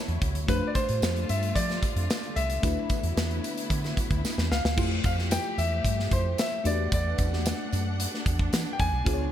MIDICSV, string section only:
0, 0, Header, 1, 2, 480
1, 0, Start_track
1, 0, Tempo, 536193
1, 432, Time_signature, 4, 2, 24, 8
1, 8342, End_track
2, 0, Start_track
2, 0, Title_t, "String section"
2, 0, Program_c, 0, 48
2, 0, Note_on_c, 0, 50, 76
2, 0, Note_on_c, 0, 54, 73
2, 0, Note_on_c, 0, 64, 79
2, 0, Note_on_c, 0, 73, 69
2, 410, Note_off_c, 0, 64, 0
2, 410, Note_off_c, 0, 73, 0
2, 411, Note_off_c, 0, 50, 0
2, 411, Note_off_c, 0, 54, 0
2, 424, Note_on_c, 0, 57, 71
2, 426, Note_on_c, 0, 65, 90
2, 427, Note_on_c, 0, 50, 75
2, 427, Note_on_c, 0, 55, 63
2, 2333, Note_off_c, 0, 57, 0
2, 2334, Note_off_c, 0, 55, 0
2, 2334, Note_off_c, 0, 65, 0
2, 2356, Note_on_c, 0, 54, 64
2, 2358, Note_on_c, 0, 64, 85
2, 2361, Note_on_c, 0, 59, 73
2, 4239, Note_off_c, 0, 50, 0
2, 4258, Note_off_c, 0, 54, 0
2, 4259, Note_off_c, 0, 64, 0
2, 4260, Note_off_c, 0, 59, 0
2, 4274, Note_on_c, 0, 57, 71
2, 4276, Note_on_c, 0, 53, 77
2, 4277, Note_on_c, 0, 67, 83
2, 5939, Note_off_c, 0, 53, 0
2, 5939, Note_off_c, 0, 67, 0
2, 5953, Note_on_c, 0, 62, 78
2, 5957, Note_on_c, 0, 78, 78
2, 8077, Note_off_c, 0, 57, 0
2, 8093, Note_off_c, 0, 78, 0
2, 8111, Note_on_c, 0, 59, 71
2, 8111, Note_on_c, 0, 65, 84
2, 8113, Note_on_c, 0, 49, 72
2, 8342, Note_off_c, 0, 49, 0
2, 8342, Note_off_c, 0, 59, 0
2, 8342, Note_off_c, 0, 62, 0
2, 8342, Note_off_c, 0, 65, 0
2, 8342, End_track
0, 0, End_of_file